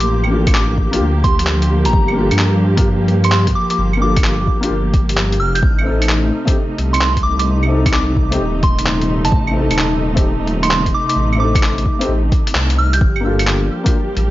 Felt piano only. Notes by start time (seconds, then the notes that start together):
0.27 A#3 D4
0.33 F4 A4
0.91 A#3 D4 F4 G4
2.12 A#3 D4
2.17 F4 A4
2.76 A#3 D4 F4
2.80 G4
3.97 A#3 D4
4.02 F4 A4
4.61 A#3 D4 F4 G4
5.81 A3 C4
5.87 D#4 A4
6.45 A3 C4 D#4
6.49 G4
7.66 A3 C4
7.71 D#4 A4
8.30 A3 C4 D#4 G4
9.51 A3 C4
9.56 D#4 A4
10.15 A3 C4 D#4 G4
11.35 A3 C4
11.41 D#4 A4
11.99 A3 C4 D#4 G4
13.20 A#3 D4
13.26 F4 A4
13.84 A#3 D4 F4
13.88 G4